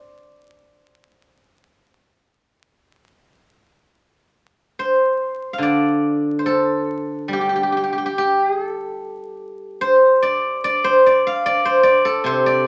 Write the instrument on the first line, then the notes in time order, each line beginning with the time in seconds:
guzheng
Already playing: C5 D5
4.79 C5
5.53 F5
5.58 D3
5.63 D5
6.39 C5
6.46 A4
7.28 G3
7.33 G4
7.41 G4
7.49 G4
7.56 G4
7.63 G4
7.72 G4
7.77 G4
7.84 G4
7.93 G4
7.98 G4
8.06 G4
8.18 G4
8.47 G#4
8.65 A4
9.81 C5
10.22 D5
10.64 D5
10.84 C5
11.06 D5
11.27 F5
11.46 D5
11.65 C5
11.83 D5
12.05 A4
12.24 C3 C5
12.46 D5